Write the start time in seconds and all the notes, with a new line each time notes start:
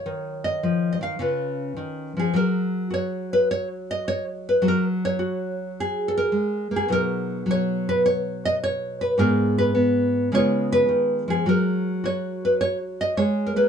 Already playing: F#3 C#5 F5
0.06 D#3
0.44 D#5
0.63 F3
0.93 D#5
1.01 D#3 F5
1.19 C#3 C#4 F4 B4
1.77 D#3
2.17 F3 G#4
2.34 F#3 F#4 A#4
2.90 F#4 C#5
3.33 B4
3.51 C#5
3.91 D#5
4.08 C#5
4.49 B4
4.62 F#3 F#4
4.68 A#4
5.05 C#5
5.19 F#4
5.80 G#4
6.08 A4
6.17 A#4
6.32 G#3
6.71 A#3
6.76 G#4
6.88 B2 F#3 D#4
6.92 A#4
7.46 F#3
7.51 C#5
7.89 B4
8.06 C#5
8.45 D#5
8.64 C#5
9.01 B4
9.18 G#2 B3 D#4 G#4 A#4
9.58 B4
9.75 B3
10.32 C#3 G#3 B3 F4 C#5
10.72 B4
10.89 D#3
11.28 F3 G#4
11.46 F#3 F#4 A#4
12.04 F#4 C#5
12.45 B4
12.61 C#5
13.01 D#5
13.17 G#3 C#5
13.46 A#4
13.56 A#3 B4